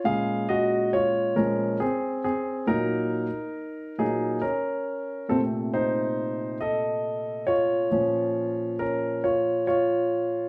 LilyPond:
<<
  \new Staff \with { instrumentName = "Grand piano" } { \time 6/8 \key bes \minor \tempo 4. = 46 <aes' f''>8 <ges' ees''>8 <f' des''>8 <des' bes'>8 <c' aes'>8 <c' aes'>8 | <ees' bes'>4. <ees' aes'>8 <des' bes'>4 | <c' a'>8 <ees' c''>4 <a' ees''>4 <f' des''>8~ | <f' des''>4 <des' bes'>8 <f' des''>8 <f' des''>4 | }
  \new Staff \with { instrumentName = "Grand piano" } { \clef bass \time 6/8 \key bes \minor <bes, des aes>4. <bes, f aes>8 r4 | <bes, ges bes>8 r4 <bes, ges bes>8 r4 | <bes, c a>2. | <bes, f des'>2. | }
>>